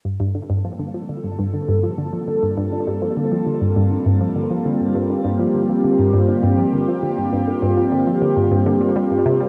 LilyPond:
<<
  \new Staff \with { instrumentName = "Analog synth pad" } { \time 4/4 \key g \minor \tempo 4 = 101 << { a'1~ | a'1 | g'1~ | g'1 | } \\ { <g bes c' f'>1~ | <g bes c' f'>1~ | <g bes c' f'>1~ | <g bes c' f'>1 | } >> }
  \new Staff \with { instrumentName = "Synth arpeggio sound" } { \clef bass \time 4/4 \key g \minor g,16 g,16 d16 g,16 f16 d16 f16 d16 g,16 g,16 d16 g,16 f16 d16 f16 d16 | g,16 g,16 d16 g,16 f16 d16 f16 d16 g,16 g,16 d16 g,16 f16 d16 f16 d16 | g,16 g,16 d16 g,16 f16 d16 f16 d16 g,16 g,16 d16 g,16 f16 d16 f16 d16 | g,16 g,16 d16 g,16 f16 d16 f16 d16 g,16 g,16 d16 g16 g16 g,16 c16 g16 | }
>>